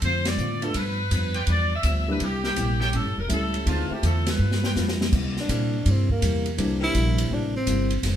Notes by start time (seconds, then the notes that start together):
0.02 F2 D3 A3 C4 F4 C5, kick, ride
0.25 D5, snare, ride
0.38 A2 D3 A3 C4 F4, hi-hat pedal
0.62 A3 B3 D4 F4 A4, ride
0.74 G2 F3 B3 D4 B4, kick, ride
1.11 F2 G2 F3 B3 D4, kick, hi-hat pedal, ride
1.34 F4 B4 D5 G5, ride
1.47 E2 G2 F3 B3 D4 D5, kick, ride
1.75 E5
1.83 D2 G2 F3 B3 D4, kick, hi-hat pedal, ride
2.08 G3 A#3 D4 E4 B4
2.19 C2 C3 G3 A#3 E4, kick, ride
2.24 G4
2.44 E4 A#4 C5 G5, snare
2.55 A#1 C3 G3 A#3 E4, kick, hi-hat pedal, ride
2.80 E4 A4 C#5 G5, snare
2.93 A1 A2 G3 C#4 E4 A4, kick, ride
3.05 G1
3.17 E1 A#4
3.28 C#2 A2 G3 A3 C#4 E4, kick, hi-hat pedal, ride
3.32 A4
3.54 ride
3.65 D2 D3 E3 G#3 A3 B3 C4 D#4 F4 C5 D5 A5, kick, ride
3.89 A3 C4 E4 F4 G4, muted upright bass stroke
4.03 E2 D3 A3 C4 F4 A4, kick, hi-hat pedal, ride
4.27 B4, snare, ride
4.39 G2 G3 D4 F4 B4
4.51 snare
4.64 F4 B4 D5 G5, snare
4.75 F2 G3 D4 F4 B4, snare, hi-hat pedal
4.88 snare
5.01 snare
5.12 C3 G3 A#3 E4, kick, crash
5.37 D4, snare
5.49 A#2 C3 G3 A#3 C4 E4 A#4, kick, hi-hat pedal, ride
5.84 G2 C3 G3 A#3 E4, kick, ride
5.90 C4
6.09 A#3, kick
6.21 E2 C3 G3 A#3 E4, kick, hi-hat pedal, ride
6.46 ride
6.57 C2 C3 E3 G3 A#3 C4 D4 E4, kick, ride
6.81 G3 C4 E4 A#4
6.93 A#1 C3 G3 A#3 E4, kick, hi-hat pedal, ride
7.18 ride
7.29 A1 C3 G3 A#3 E4, kick
7.34 D4
7.56 C4
7.67 G1 C3 G3 A#3 E4, kick, hi-hat pedal, ride
7.90 ride
8.03 F1 F2 D#3 A3 C4, kick, snare, ride